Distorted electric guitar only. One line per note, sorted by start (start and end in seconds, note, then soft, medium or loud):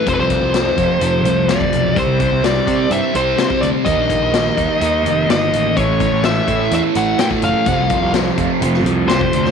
0.05 0.53 F2 medium
0.05 0.30 C3 medium
0.05 0.28 F3 medium
0.29 0.54 C3 medium
0.29 0.56 F3 medium
0.54 0.98 F2 medium
0.54 0.79 C3 medium
0.54 0.76 F3 medium
0.77 1.00 C3 soft
0.77 1.01 F3 medium
1.00 1.47 F2 medium
1.00 1.26 C3 medium
1.00 1.23 F3 medium
1.24 1.49 C3 medium
1.24 1.50 F3 medium
1.49 1.95 F2 medium
1.49 1.94 C3 medium
1.49 1.96 F3 medium
1.95 2.41 C3 medium
1.95 2.21 G3 medium
1.95 2.18 C4 medium
2.19 2.44 G3 medium
2.19 2.44 C4 medium
2.43 2.89 C3 medium
2.43 2.69 G3 medium
2.43 2.65 C4 medium
2.66 2.91 G3 medium
2.66 2.91 C4 medium
2.90 3.37 C3 medium
2.90 3.16 G3 medium
2.90 3.13 C4 medium
3.14 3.38 G3 medium
3.14 3.39 C4 medium
3.38 3.84 C3 medium
3.38 3.85 G3 medium
3.38 3.86 C4 medium
3.86 4.31 D#3 medium
3.86 4.10 A#3 medium
3.86 4.07 D#4 medium
4.08 4.32 A#3 medium
4.08 4.34 D#4 medium
4.32 4.78 D#3 medium
4.32 4.58 A#3 medium
4.32 4.55 D#4 medium
4.56 4.80 A#3 medium
4.56 4.80 D#4 medium
4.79 5.27 D#3 medium
4.79 5.05 A#3 medium
4.79 5.02 D#4 medium
5.03 5.28 A#3 medium
5.03 5.29 D#4 medium
5.28 5.74 D#3 medium
5.28 5.75 A#3 medium
5.28 5.76 D#4 medium
5.76 6.22 A2 medium
5.76 6.01 E3 medium
5.76 5.99 A3 medium
5.99 6.24 E3 medium
5.99 6.26 A3 medium
6.24 6.70 A2 medium
6.24 6.49 E3 medium
6.24 6.47 A3 medium
6.47 6.72 E3 medium
6.47 6.74 A3 medium
6.72 7.18 A2 medium
6.72 6.98 E3 medium
6.72 6.95 A3 medium
6.96 7.20 E3 medium
6.96 7.21 A3 medium
7.19 7.65 A2 medium
7.19 7.66 E3 medium
7.19 7.67 A3 medium
7.67 8.12 F2 medium
7.67 7.92 C3 medium
7.67 7.89 F3 medium
7.90 8.14 C3 medium
7.90 8.15 F3 medium
8.13 8.60 F2 medium
8.13 8.39 C3 medium
8.13 8.36 F3 medium
8.37 8.62 C3 medium
8.37 8.63 F3 medium
8.61 9.08 F2 medium
8.61 8.86 C3 medium
8.61 8.84 F3 medium
8.85 9.09 C3 soft
8.85 9.11 F3 medium
9.09 9.51 F2 medium
9.09 9.51 C3 medium
9.09 9.51 F3 medium